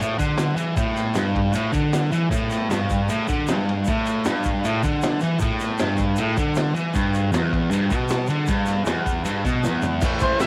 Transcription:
0.00 A2, shaker
0.18 D3, kick, ride, shaker
0.38 snare, ride, shaker
0.56 E3, ride, shaker
0.76 A2, kick, ride, shaker
0.96 snare, ride, shaker
1.14 G2, snare, ride, shaker
1.36 kick, ride
1.53 A2, ride, shaker
1.73 D3, kick, ride, shaker
1.93 snare, ride, shaker
2.11 E3, ride, shaker
2.30 A2, kick, ride, shaker
2.50 snare, ride, shaker
2.69 G2, snare, ride, shaker
2.90 kick, ride, shaker
3.09 A2, ride, shaker
3.28 D3, kick, ride, shaker
3.47 G2, snare, ride, shaker
3.69 ride
3.85 A2, kick, ride, shaker
4.06 ride, shaker
4.25 G2, snare, ride, shaker
4.43 kick, ride, shaker
4.64 A2, ride, shaker
4.83 D3, kick, ride, shaker
5.02 snare, ride, shaker
5.20 E3, ride, shaker
5.39 A2, kick, ride, shaker
5.60 snare, ride, shaker
5.78 G2, snare, ride, shaker
5.97 kick, ride, shaker
6.16 A2, ride, shaker
6.37 D3, kick, ride, shaker
6.55 snare, ride, shaker
6.74 E3, ride, shaker
6.94 G2, kick, ride, shaker
7.14 ride, shaker
7.32 E2, snare, ride, shaker
7.53 kick, ride
7.71 G2, ride, shaker
7.90 B2, kick, ride, shaker
8.09 snare, ride, shaker
8.27 D3, ride, shaker
8.47 G2, kick, ride, shaker
8.66 snare, ride, shaker
8.85 E2, snare, ride, shaker
9.06 kick, ride, shaker
9.25 G2, ride, shaker
9.45 B2, kick, ride, shaker
9.63 E2, snare, shaker
9.82 floor tom, shaker
10.01 A2 E3 A3, kick, crash, shaker
10.19 A3 C5, kick, crash, shaker
10.25 E3
10.40 A2 E3 E5, snare, crash, shaker

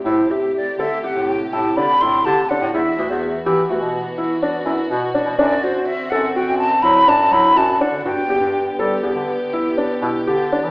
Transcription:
0.04 A2 C3 A3 E4 G4 C5
0.31 G4 E5
0.56 D5
0.78 D3 A4 E5
1.04 G4 F#5
1.15 A2
1.29 G5
1.52 A2 E4 A5
1.76 D3 D4 B5
2.01 A2 E4 C6
2.25 D3 G4 A5
2.49 D4 F#5
2.61 A2
2.73 E2 E3 B3 E4 F#4 E5
2.97 D2 F#4
3.09 E2
3.45 E3 G4
3.69 D2 F#4
3.81 B2
4.18 E4
4.43 D4
4.65 F#2 E4
4.89 B2 F#4
5.14 D4
5.25 B2
5.36 F#2 D3 C4 D4 D5
5.63 F#4 C5
5.86 E5
6.10 F#2 A4 F#5
6.35 F#4 G5
6.47 F#2
6.58 A5
6.82 F#3 E4 B5
7.07 F#2 D4 A5
7.31 F#3 E4 B5
7.55 F#2 F#4 A5
7.81 D4 F#5
7.91 D3
8.03 G2 B3 F#4 G4 G5
8.28 E2 G4
8.40 G2
8.77 G3 A4
9.02 E2 G4
9.15 D3
9.53 E4
9.77 D4
10.01 B2 E4
10.27 D3 G4
10.52 D4
10.65 E3

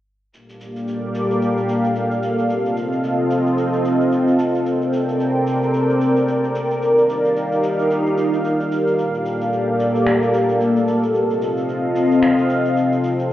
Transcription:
0.34 A#3 G4 A4 D5 F5, shaker
0.49 shaker
0.61 shaker
0.76 shaker
0.88 shaker
1.15 shaker
1.31 shaker
1.42 shaker
1.57 shaker
1.69 shaker
1.84 shaker
1.96 shaker
2.11 shaker
2.23 shaker
2.39 shaker
2.50 C4 F4 D#5, shaker
2.65 shaker
2.77 shaker
2.92 shaker
3.04 shaker
3.31 shaker
3.46 shaker
3.58 shaker
3.73 shaker
3.85 shaker
4.01 shaker
4.12 shaker
4.28 shaker
4.39 shaker
4.55 shaker
4.66 C4 A#4 D5 G5, shaker
4.82 shaker
4.93 shaker
5.09 shaker
5.20 shaker
5.47 shaker
5.63 shaker
5.74 shaker
5.90 shaker
6.01 shaker
6.16 shaker
6.28 shaker
6.44 shaker
6.55 shaker
6.71 shaker
6.82 D#4 G4 F5, shaker
6.98 shaker
7.09 shaker
7.25 shaker
7.36 shaker
7.52 shaker
7.63 shaker
7.79 shaker
7.91 shaker
8.06 shaker
8.18 shaker
8.33 shaker
8.45 shaker
8.60 shaker
8.72 shaker
8.87 shaker
8.98 A#3 G4 A4 D5, shaker
9.14 shaker
9.26 shaker
9.41 shaker
9.53 shaker
9.80 shaker
9.95 shaker
10.07 finger snap, shaker
10.22 shaker
10.34 shaker
10.49 shaker
10.61 shaker
10.76 shaker
10.88 shaker
11.03 shaker
11.14 C4 F4 D#5 F5, shaker
11.30 shaker
11.42 shaker
11.57 shaker
11.69 shaker
11.96 shaker
12.11 shaker
12.23 finger snap, shaker
12.38 shaker
12.49 shaker
12.65 shaker
12.77 shaker
12.92 shaker
13.04 shaker
13.19 shaker

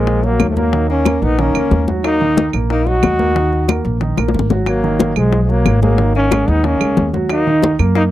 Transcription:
Already playing: A#1 F3 G#3 A#3 A#4
0.07 high bongo, high conga
0.23 F#3 A#3 F#4, high bongo, high conga
0.40 D#2, high bongo, low bongo, high conga, claves
0.50 F3 A3
0.56 F#3 A#3 A#4, high bongo, high conga
0.73 D#3 D#4, high bongo, high conga
0.90 A#3 C#4, high conga
1.05 A#3 A#4, high bongo, high conga, claves
1.22 A#1 B3 D#4, high bongo, high conga
1.39 D#3 A#3 C#4 D#4, high bongo, high conga
1.54 C#2 A#3 A#4, high bongo, high conga, claves
1.71 D#2, high bongo, low bongo, high conga
1.88 F#3 F#4, high bongo, high conga
2.04 A#3 D#4, high bongo, high conga, claves
2.21 D#3 D#4, high conga
2.37 high bongo, high conga
2.53 A#1 A#3 A#4, high bongo, high conga, claves
2.70 A#3 D#4, high bongo, high conga
2.87 F#3 D#4 F#4, high bongo, high conga
3.03 D#2, high bongo, low bongo, high conga, claves
3.19 A#3 A#4, high bongo, high conga
3.35 D#3 D#4, high bongo, high conga
3.53 high conga
3.68 A#3 A#4, high bongo, high conga, claves
3.85 A#1, high bongo, high conga
4.01 D#3 D#4, high bongo, high conga
4.17 A#1 A#3 A#4, high bongo, high conga, claves
4.28 high bongo
4.34 G#1, high conga
4.39 low bongo
4.50 F#3 F#4, low bongo, high conga
4.66 F#3 A#3, high bongo, high conga, claves
4.84 D#3 D#4, high conga
4.99 high bongo, high conga
5.16 B1 F3 G#3 G#4, high bongo, high conga, claves
5.33 high bongo, high conga
5.43 F3 G#3
5.49 F#3 A#3 F#4, high bongo, high conga
5.65 G#1, high bongo, low bongo, high conga, claves
5.82 F#3 G#3 A#3 G#4, high bongo, high conga
5.98 D#3 D#4, high bongo, high conga
6.15 A#3 C#4, high conga
6.31 G#3 G#4, high bongo, high conga, claves
6.48 D#2 B3 D#4, high bongo, high conga
6.64 D#3 A#3 C#4 D#4, high bongo, high conga
6.80 C#2 G#3 G#4, high bongo, high conga, claves
6.97 D#2, high bongo, low bongo, high conga
7.13 F#3 F#4, high bongo, high conga
7.29 A#3 D#4, high bongo, high conga, claves
7.47 D#3 D#4, high conga
7.62 high bongo, high conga
7.79 F#2 A#3 A#4, high bongo, high conga, claves
7.95 A#3 D#4, high bongo, high conga

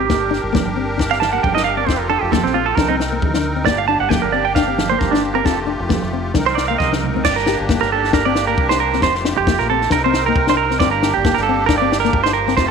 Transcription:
Already playing: G#1 A#4
0.00 G4
0.10 G1 A#3 D4 G4, kick, snare, muted conga
0.31 D4, snare
0.43 G1
0.53 A#3, kick, snare, high conga
0.65 G1
0.77 C4
0.98 D4, kick, snare, muted conga
1.11 C4 F5, snare
1.20 A5, snare, high conga
1.33 A#3 F#5
1.43 G1 G5, kick, high conga
1.55 D4 D#5, snare
1.64 F5, muted conga
1.77 C4 D5
1.87 F1 C4 F4 G4 A4 C5, kick, snare, muted conga
1.99 A#4
2.10 D4 A4, muted conga
2.21 F1 G4
2.32 A#3 A4, kick, snare, high conga
2.44 A#1 C4, snare
2.54 C4 F4
2.66 A4
2.76 C2 C4 D4 D#4 A#4, kick, snare, muted conga, high conga
2.88 C4 D#4
3.00 snare
3.12 A#3
3.22 D2, kick, high conga
3.34 D4, snare
3.44 muted conga
3.56 C4
3.65 G1 A#3 D4 G4 D5, kick, snare
3.78 F5
3.88 D4 A5, muted conga
4.00 G1 F#5
4.09 A#3 G5, kick, snare, high conga
4.22 G1 A#4
4.32 C4 D5
4.45 G5
4.55 D4 F5, kick, snare, muted conga
4.68 C4
4.78 snare, high conga
4.89 A#3 C5
4.99 G1 A#4, kick, snare, high conga
5.11 D4, snare
5.23 muted conga
5.35 C4 A#4
5.45 F1 A3 C4 F4 A4, kick, snare, muted conga
5.67 D4, muted conga
5.80 F1
5.89 A#3, kick, snare, high conga
6.02 F1, snare
6.13 C4
6.34 C2 C4 D4 D#4 A#4, kick, snare, muted conga, high conga
6.46 C5, snare
6.55 D5, snare
6.68 A#3 F5
6.78 C2 D#5, kick, snare, high conga
6.92 D4, snare, high conga
7.03 low conga
7.14 C4, low conga
7.25 G1 A#3 C4 D4 G4 D5, kick, snare, crash
7.36 A#4, snare
7.46 G4, snare
7.60 G1
7.69 A#3, kick, snare
7.81 G1 A#4, snare
7.92 A4
8.04 snare
8.13 D4 A#4, kick, snare
8.25 C4 D5
8.35 snare
8.47 A#3 A#4
8.58 C2, kick
8.69 D4 C5, snare
8.80 A#4
8.93 C4, snare
9.01 F1 A3 C4 F4 C5, kick, snare
9.15 snare
9.25 D4, snare
9.38 F1 G4
9.47 A#3, kick, snare
9.59 A#1 A#4, snare
9.70 C4 A4
9.82 snare
9.90 C2 C4 D4 D#4 A#4, kick, snare
10.04 C4 C5
10.14 snare
10.26 A#3 A#4
10.36 C2, kick
10.47 D4 C5, snare
10.57 A#4
10.71 C4, snare
10.79 G1 A#3 C4 D4 G4 D5, kick, snare
10.91 A#4
11.02 D4, snare
11.14 G1 G4
11.25 A#3, kick, snare
11.34 G1 A#4, snare
11.43 A4
11.49 C4
11.66 D4 A#4, kick, snare
11.78 D5
11.82 C4
11.92 snare
12.00 A#4, snare
12.05 A#3
12.13 G1, kick
12.23 D4 C5, snare
12.33 A#4
12.48 C4, snare
12.57 F1 A3 C4 F4 G4 C5, kick, snare

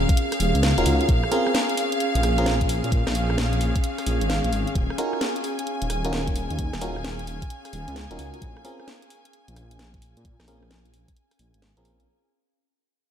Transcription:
Already playing: C#4 G#4 F5
0.09 kick, closed hi-hat
0.17 closed hi-hat
0.32 cross-stick, open hi-hat
0.40 D#1, open hi-hat
0.55 C#2, closed hi-hat
0.63 snare
0.78 D#1 C#4 D#4 F4 F#4 A#4, closed hi-hat
0.86 C#2, open hi-hat
1.01 closed hi-hat
1.09 A#1, kick, closed hi-hat
1.24 cross-stick
1.32 C4 C#4 F4 G#4 A#4, open hi-hat
1.47 cross-stick
1.55 snare
1.69 closed hi-hat
1.77 open hi-hat
1.92 closed hi-hat
2.00 closed hi-hat
2.15 A#1, closed hi-hat
2.23 A#1, cross-stick, open hi-hat
2.38 C4 C#4 F4 G#4 A#4, closed hi-hat
2.46 snare
2.61 kick, closed hi-hat
2.69 open hi-hat
2.84 A#2, closed hi-hat
2.92 kick, closed hi-hat
3.07 A#1, cross-stick, snare
3.15 open hi-hat
3.30 cross-stick
3.38 snare
3.53 closed hi-hat
3.61 open hi-hat
3.76 kick, closed hi-hat
3.84 closed hi-hat
3.98 cross-stick, open hi-hat
4.07 A#1, open hi-hat
4.21 G#1, closed hi-hat
4.30 snare
4.44 A#1, closed hi-hat
4.52 G#1, open hi-hat
4.67 closed hi-hat
4.75 D#1 G#5, kick, closed hi-hat
4.90 cross-stick
4.98 C#4 D#4 F4 F#4 A#4, open hi-hat
5.13 cross-stick
5.21 snare
5.36 closed hi-hat
5.44 open hi-hat
5.59 closed hi-hat
5.67 closed hi-hat
5.82 D#1, closed hi-hat
5.90 D#1, cross-stick, open hi-hat
6.05 C#4 D#4 F4 F#4 A#4, closed hi-hat
6.13 snare
6.27 kick, closed hi-hat
6.36 open hi-hat
6.50 D#2, closed hi-hat
6.59 kick, closed hi-hat
6.73 D#1, cross-stick, snare
6.81 C#4 D#4 F4 F#4 A#4, open hi-hat
6.96 cross-stick
7.04 snare
7.19 closed hi-hat
7.27 open hi-hat
7.42 kick, closed hi-hat
7.50 closed hi-hat
7.65 cross-stick, open hi-hat
7.73 D#1, open hi-hat
7.88 C#2, closed hi-hat
7.96 snare
8.11 D#1 C#4 D#4 F4 F#4 A#4, closed hi-hat
8.19 C#2, open hi-hat
8.34 closed hi-hat
8.42 A#1, kick, closed hi-hat
8.57 cross-stick
8.65 C4 C#4 F4 G#4 A#4, open hi-hat
8.80 cross-stick
8.88 snare
9.02 closed hi-hat
9.10 open hi-hat
9.25 closed hi-hat
9.33 closed hi-hat
9.48 A#1, closed hi-hat
9.56 A#1, cross-stick, open hi-hat
9.71 closed hi-hat
9.79 snare
9.94 kick, closed hi-hat
10.02 open hi-hat
10.17 A#2, closed hi-hat
10.25 kick, closed hi-hat
10.40 A#1, cross-stick, snare
10.48 C4 C#4 F4 G#4 A#4, open hi-hat
10.63 cross-stick
10.71 snare
10.86 closed hi-hat
10.94 open hi-hat
11.08 kick, closed hi-hat
11.17 closed hi-hat
11.31 cross-stick, open hi-hat
11.39 A#1, open hi-hat
11.54 G#1, closed hi-hat
11.62 snare
11.77 A#1 C4 C#4 F4 G#4 A#4, closed hi-hat
11.85 open hi-hat
12.00 closed hi-hat

